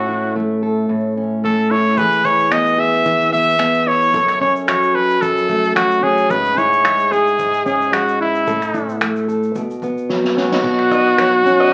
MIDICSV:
0, 0, Header, 1, 5, 480
1, 0, Start_track
1, 0, Key_signature, 4, "major"
1, 0, Tempo, 542005
1, 1746, Time_signature, 4, 2, 24, 8
1, 10393, End_track
2, 0, Start_track
2, 0, Title_t, "Mandolin"
2, 0, Program_c, 0, 25
2, 9663, Note_on_c, 0, 75, 68
2, 9789, Note_off_c, 0, 75, 0
2, 9902, Note_on_c, 0, 73, 65
2, 10028, Note_off_c, 0, 73, 0
2, 10272, Note_on_c, 0, 75, 71
2, 10376, Note_off_c, 0, 75, 0
2, 10393, End_track
3, 0, Start_track
3, 0, Title_t, "Trumpet"
3, 0, Program_c, 1, 56
3, 0, Note_on_c, 1, 66, 74
3, 307, Note_off_c, 1, 66, 0
3, 1276, Note_on_c, 1, 69, 80
3, 1513, Note_on_c, 1, 73, 86
3, 1526, Note_off_c, 1, 69, 0
3, 1751, Note_on_c, 1, 71, 95
3, 1765, Note_off_c, 1, 73, 0
3, 1993, Note_on_c, 1, 73, 90
3, 2006, Note_off_c, 1, 71, 0
3, 2230, Note_on_c, 1, 75, 81
3, 2243, Note_off_c, 1, 73, 0
3, 2477, Note_on_c, 1, 76, 98
3, 2490, Note_off_c, 1, 75, 0
3, 2941, Note_off_c, 1, 76, 0
3, 2946, Note_on_c, 1, 76, 105
3, 3428, Note_on_c, 1, 73, 95
3, 3441, Note_off_c, 1, 76, 0
3, 3900, Note_off_c, 1, 73, 0
3, 3906, Note_on_c, 1, 73, 80
3, 4013, Note_off_c, 1, 73, 0
3, 4144, Note_on_c, 1, 73, 77
3, 4384, Note_on_c, 1, 71, 88
3, 4398, Note_off_c, 1, 73, 0
3, 4616, Note_on_c, 1, 69, 90
3, 4629, Note_off_c, 1, 71, 0
3, 5094, Note_off_c, 1, 69, 0
3, 5099, Note_on_c, 1, 66, 81
3, 5340, Note_on_c, 1, 68, 86
3, 5353, Note_off_c, 1, 66, 0
3, 5582, Note_on_c, 1, 71, 90
3, 5595, Note_off_c, 1, 68, 0
3, 5824, Note_on_c, 1, 73, 94
3, 5837, Note_off_c, 1, 71, 0
3, 6302, Note_on_c, 1, 68, 87
3, 6316, Note_off_c, 1, 73, 0
3, 6777, Note_off_c, 1, 68, 0
3, 6782, Note_on_c, 1, 68, 75
3, 7023, Note_on_c, 1, 66, 76
3, 7036, Note_off_c, 1, 68, 0
3, 7263, Note_off_c, 1, 66, 0
3, 7268, Note_on_c, 1, 64, 76
3, 7950, Note_off_c, 1, 64, 0
3, 9189, Note_on_c, 1, 66, 87
3, 10393, Note_off_c, 1, 66, 0
3, 10393, End_track
4, 0, Start_track
4, 0, Title_t, "Steel-string acoustic guitar"
4, 0, Program_c, 2, 25
4, 0, Note_on_c, 2, 45, 68
4, 0, Note_on_c, 2, 61, 53
4, 0, Note_on_c, 2, 69, 61
4, 74, Note_on_c, 2, 64, 49
4, 317, Note_on_c, 2, 57, 54
4, 545, Note_off_c, 2, 69, 0
4, 556, Note_on_c, 2, 69, 53
4, 780, Note_off_c, 2, 45, 0
4, 790, Note_on_c, 2, 45, 69
4, 1035, Note_off_c, 2, 61, 0
4, 1039, Note_on_c, 2, 61, 49
4, 1269, Note_off_c, 2, 57, 0
4, 1280, Note_on_c, 2, 57, 57
4, 1511, Note_off_c, 2, 64, 0
4, 1515, Note_on_c, 2, 64, 50
4, 1750, Note_off_c, 2, 69, 0
4, 1752, Note_off_c, 2, 57, 0
4, 1755, Note_on_c, 2, 52, 72
4, 1760, Note_on_c, 2, 68, 64
4, 1801, Note_off_c, 2, 45, 0
4, 1805, Note_off_c, 2, 61, 0
4, 1986, Note_off_c, 2, 64, 0
4, 1990, Note_on_c, 2, 64, 54
4, 2224, Note_on_c, 2, 59, 57
4, 2453, Note_off_c, 2, 68, 0
4, 2463, Note_on_c, 2, 68, 53
4, 2695, Note_off_c, 2, 52, 0
4, 2706, Note_on_c, 2, 52, 70
4, 2935, Note_off_c, 2, 59, 0
4, 2946, Note_on_c, 2, 59, 50
4, 3170, Note_off_c, 2, 59, 0
4, 3180, Note_on_c, 2, 59, 62
4, 3413, Note_off_c, 2, 64, 0
4, 3423, Note_on_c, 2, 64, 54
4, 3662, Note_on_c, 2, 42, 72
4, 3664, Note_off_c, 2, 68, 0
4, 3669, Note_on_c, 2, 69, 60
4, 3715, Note_off_c, 2, 59, 0
4, 3717, Note_off_c, 2, 64, 0
4, 3718, Note_off_c, 2, 52, 0
4, 3902, Note_on_c, 2, 61, 56
4, 4145, Note_on_c, 2, 54, 59
4, 4369, Note_off_c, 2, 69, 0
4, 4380, Note_on_c, 2, 69, 57
4, 4609, Note_off_c, 2, 42, 0
4, 4619, Note_on_c, 2, 42, 72
4, 4860, Note_on_c, 2, 57, 50
4, 5088, Note_off_c, 2, 54, 0
4, 5098, Note_on_c, 2, 54, 59
4, 5333, Note_off_c, 2, 61, 0
4, 5336, Note_on_c, 2, 61, 52
4, 5574, Note_off_c, 2, 42, 0
4, 5577, Note_on_c, 2, 44, 77
4, 5581, Note_off_c, 2, 69, 0
4, 5584, Note_on_c, 2, 68, 64
4, 5634, Note_off_c, 2, 54, 0
4, 5635, Note_off_c, 2, 57, 0
4, 5821, Note_off_c, 2, 61, 0
4, 5825, Note_on_c, 2, 64, 53
4, 6062, Note_on_c, 2, 56, 65
4, 6292, Note_off_c, 2, 68, 0
4, 6303, Note_on_c, 2, 68, 54
4, 6536, Note_off_c, 2, 44, 0
4, 6547, Note_on_c, 2, 44, 71
4, 6783, Note_on_c, 2, 61, 50
4, 7003, Note_off_c, 2, 56, 0
4, 7014, Note_on_c, 2, 56, 62
4, 7254, Note_off_c, 2, 64, 0
4, 7264, Note_on_c, 2, 64, 51
4, 7498, Note_off_c, 2, 44, 0
4, 7502, Note_on_c, 2, 45, 72
4, 7503, Note_off_c, 2, 68, 0
4, 7506, Note_on_c, 2, 69, 66
4, 7551, Note_off_c, 2, 56, 0
4, 7556, Note_off_c, 2, 61, 0
4, 7557, Note_off_c, 2, 64, 0
4, 7743, Note_on_c, 2, 64, 54
4, 7986, Note_on_c, 2, 57, 59
4, 8211, Note_off_c, 2, 69, 0
4, 8222, Note_on_c, 2, 69, 55
4, 8462, Note_off_c, 2, 45, 0
4, 8462, Note_on_c, 2, 47, 70
4, 8515, Note_off_c, 2, 69, 0
4, 8516, Note_off_c, 2, 64, 0
4, 8517, Note_off_c, 2, 57, 0
4, 8709, Note_on_c, 2, 59, 49
4, 8940, Note_on_c, 2, 54, 61
4, 9182, Note_on_c, 2, 61, 53
4, 9319, Note_off_c, 2, 61, 0
4, 9319, Note_on_c, 2, 63, 42
4, 9411, Note_off_c, 2, 47, 0
4, 9422, Note_on_c, 2, 47, 78
4, 9478, Note_off_c, 2, 63, 0
4, 9665, Note_on_c, 2, 63, 53
4, 9896, Note_off_c, 2, 54, 0
4, 9900, Note_on_c, 2, 54, 61
4, 10141, Note_off_c, 2, 59, 0
4, 10145, Note_on_c, 2, 61, 51
4, 10370, Note_off_c, 2, 47, 0
4, 10393, Note_off_c, 2, 54, 0
4, 10393, Note_off_c, 2, 61, 0
4, 10393, Note_off_c, 2, 63, 0
4, 10393, End_track
5, 0, Start_track
5, 0, Title_t, "Drums"
5, 1747, Note_on_c, 9, 36, 90
5, 1748, Note_on_c, 9, 82, 64
5, 1835, Note_off_c, 9, 36, 0
5, 1836, Note_off_c, 9, 82, 0
5, 1877, Note_on_c, 9, 82, 46
5, 1965, Note_off_c, 9, 82, 0
5, 1986, Note_on_c, 9, 36, 81
5, 1989, Note_on_c, 9, 82, 44
5, 2075, Note_off_c, 9, 36, 0
5, 2078, Note_off_c, 9, 82, 0
5, 2120, Note_on_c, 9, 82, 45
5, 2208, Note_off_c, 9, 82, 0
5, 2228, Note_on_c, 9, 26, 92
5, 2228, Note_on_c, 9, 82, 58
5, 2316, Note_off_c, 9, 82, 0
5, 2317, Note_off_c, 9, 26, 0
5, 2358, Note_on_c, 9, 82, 47
5, 2447, Note_off_c, 9, 82, 0
5, 2598, Note_on_c, 9, 82, 39
5, 2686, Note_off_c, 9, 82, 0
5, 2703, Note_on_c, 9, 82, 69
5, 2704, Note_on_c, 9, 36, 79
5, 2792, Note_off_c, 9, 82, 0
5, 2793, Note_off_c, 9, 36, 0
5, 2840, Note_on_c, 9, 82, 47
5, 2928, Note_off_c, 9, 82, 0
5, 2941, Note_on_c, 9, 36, 71
5, 3029, Note_off_c, 9, 36, 0
5, 3076, Note_on_c, 9, 82, 37
5, 3165, Note_off_c, 9, 82, 0
5, 3181, Note_on_c, 9, 26, 85
5, 3181, Note_on_c, 9, 82, 60
5, 3269, Note_off_c, 9, 26, 0
5, 3270, Note_off_c, 9, 82, 0
5, 3314, Note_on_c, 9, 82, 47
5, 3403, Note_off_c, 9, 82, 0
5, 3553, Note_on_c, 9, 82, 40
5, 3641, Note_off_c, 9, 82, 0
5, 3663, Note_on_c, 9, 82, 62
5, 3664, Note_on_c, 9, 36, 97
5, 3751, Note_off_c, 9, 82, 0
5, 3752, Note_off_c, 9, 36, 0
5, 3792, Note_on_c, 9, 82, 48
5, 3794, Note_on_c, 9, 26, 30
5, 3881, Note_off_c, 9, 82, 0
5, 3882, Note_off_c, 9, 26, 0
5, 3903, Note_on_c, 9, 36, 76
5, 3991, Note_off_c, 9, 36, 0
5, 4036, Note_on_c, 9, 82, 40
5, 4124, Note_off_c, 9, 82, 0
5, 4145, Note_on_c, 9, 26, 94
5, 4145, Note_on_c, 9, 82, 62
5, 4234, Note_off_c, 9, 26, 0
5, 4234, Note_off_c, 9, 82, 0
5, 4277, Note_on_c, 9, 82, 44
5, 4365, Note_off_c, 9, 82, 0
5, 4516, Note_on_c, 9, 82, 41
5, 4605, Note_off_c, 9, 82, 0
5, 4623, Note_on_c, 9, 82, 71
5, 4624, Note_on_c, 9, 36, 80
5, 4711, Note_off_c, 9, 82, 0
5, 4713, Note_off_c, 9, 36, 0
5, 4758, Note_on_c, 9, 82, 47
5, 4846, Note_off_c, 9, 82, 0
5, 4860, Note_on_c, 9, 36, 74
5, 4862, Note_on_c, 9, 82, 39
5, 4949, Note_off_c, 9, 36, 0
5, 4950, Note_off_c, 9, 82, 0
5, 4998, Note_on_c, 9, 82, 38
5, 5087, Note_off_c, 9, 82, 0
5, 5103, Note_on_c, 9, 26, 87
5, 5103, Note_on_c, 9, 82, 61
5, 5191, Note_off_c, 9, 26, 0
5, 5191, Note_off_c, 9, 82, 0
5, 5235, Note_on_c, 9, 82, 48
5, 5324, Note_off_c, 9, 82, 0
5, 5341, Note_on_c, 9, 36, 73
5, 5429, Note_off_c, 9, 36, 0
5, 5468, Note_on_c, 9, 82, 44
5, 5557, Note_off_c, 9, 82, 0
5, 5579, Note_on_c, 9, 82, 61
5, 5583, Note_on_c, 9, 36, 103
5, 5667, Note_off_c, 9, 82, 0
5, 5671, Note_off_c, 9, 36, 0
5, 5710, Note_on_c, 9, 82, 50
5, 5799, Note_off_c, 9, 82, 0
5, 5823, Note_on_c, 9, 36, 80
5, 5825, Note_on_c, 9, 82, 43
5, 5911, Note_off_c, 9, 36, 0
5, 5914, Note_off_c, 9, 82, 0
5, 5959, Note_on_c, 9, 82, 44
5, 6047, Note_off_c, 9, 82, 0
5, 6065, Note_on_c, 9, 26, 97
5, 6065, Note_on_c, 9, 82, 61
5, 6153, Note_off_c, 9, 26, 0
5, 6153, Note_off_c, 9, 82, 0
5, 6196, Note_on_c, 9, 82, 46
5, 6284, Note_off_c, 9, 82, 0
5, 6311, Note_on_c, 9, 82, 49
5, 6400, Note_off_c, 9, 82, 0
5, 6437, Note_on_c, 9, 82, 41
5, 6526, Note_off_c, 9, 82, 0
5, 6544, Note_on_c, 9, 36, 77
5, 6544, Note_on_c, 9, 82, 65
5, 6632, Note_off_c, 9, 36, 0
5, 6632, Note_off_c, 9, 82, 0
5, 6675, Note_on_c, 9, 82, 46
5, 6764, Note_off_c, 9, 82, 0
5, 6780, Note_on_c, 9, 36, 75
5, 6785, Note_on_c, 9, 82, 43
5, 6869, Note_off_c, 9, 36, 0
5, 6874, Note_off_c, 9, 82, 0
5, 6922, Note_on_c, 9, 82, 39
5, 7011, Note_off_c, 9, 82, 0
5, 7025, Note_on_c, 9, 26, 90
5, 7025, Note_on_c, 9, 82, 59
5, 7114, Note_off_c, 9, 26, 0
5, 7114, Note_off_c, 9, 82, 0
5, 7159, Note_on_c, 9, 82, 44
5, 7247, Note_off_c, 9, 82, 0
5, 7394, Note_on_c, 9, 82, 41
5, 7483, Note_off_c, 9, 82, 0
5, 7503, Note_on_c, 9, 36, 96
5, 7504, Note_on_c, 9, 82, 63
5, 7591, Note_off_c, 9, 36, 0
5, 7592, Note_off_c, 9, 82, 0
5, 7634, Note_on_c, 9, 82, 50
5, 7635, Note_on_c, 9, 26, 31
5, 7722, Note_off_c, 9, 82, 0
5, 7724, Note_off_c, 9, 26, 0
5, 7741, Note_on_c, 9, 36, 78
5, 7743, Note_on_c, 9, 82, 48
5, 7829, Note_off_c, 9, 36, 0
5, 7831, Note_off_c, 9, 82, 0
5, 7873, Note_on_c, 9, 82, 44
5, 7961, Note_off_c, 9, 82, 0
5, 7980, Note_on_c, 9, 82, 63
5, 7981, Note_on_c, 9, 26, 91
5, 8069, Note_off_c, 9, 26, 0
5, 8069, Note_off_c, 9, 82, 0
5, 8112, Note_on_c, 9, 82, 46
5, 8201, Note_off_c, 9, 82, 0
5, 8227, Note_on_c, 9, 82, 49
5, 8316, Note_off_c, 9, 82, 0
5, 8351, Note_on_c, 9, 82, 40
5, 8440, Note_off_c, 9, 82, 0
5, 8459, Note_on_c, 9, 82, 65
5, 8460, Note_on_c, 9, 36, 83
5, 8547, Note_off_c, 9, 82, 0
5, 8549, Note_off_c, 9, 36, 0
5, 8594, Note_on_c, 9, 82, 46
5, 8683, Note_off_c, 9, 82, 0
5, 8697, Note_on_c, 9, 36, 74
5, 8702, Note_on_c, 9, 82, 43
5, 8786, Note_off_c, 9, 36, 0
5, 8791, Note_off_c, 9, 82, 0
5, 8834, Note_on_c, 9, 82, 35
5, 8923, Note_off_c, 9, 82, 0
5, 8939, Note_on_c, 9, 38, 44
5, 9028, Note_off_c, 9, 38, 0
5, 9073, Note_on_c, 9, 38, 53
5, 9162, Note_off_c, 9, 38, 0
5, 9184, Note_on_c, 9, 38, 70
5, 9273, Note_off_c, 9, 38, 0
5, 9313, Note_on_c, 9, 38, 77
5, 9402, Note_off_c, 9, 38, 0
5, 9421, Note_on_c, 9, 36, 99
5, 9422, Note_on_c, 9, 49, 78
5, 9510, Note_off_c, 9, 36, 0
5, 9510, Note_off_c, 9, 49, 0
5, 9554, Note_on_c, 9, 26, 31
5, 9643, Note_off_c, 9, 26, 0
5, 9661, Note_on_c, 9, 36, 80
5, 9662, Note_on_c, 9, 82, 47
5, 9749, Note_off_c, 9, 36, 0
5, 9751, Note_off_c, 9, 82, 0
5, 9904, Note_on_c, 9, 82, 60
5, 9905, Note_on_c, 9, 26, 90
5, 9993, Note_off_c, 9, 26, 0
5, 9993, Note_off_c, 9, 82, 0
5, 10149, Note_on_c, 9, 82, 50
5, 10238, Note_off_c, 9, 82, 0
5, 10393, End_track
0, 0, End_of_file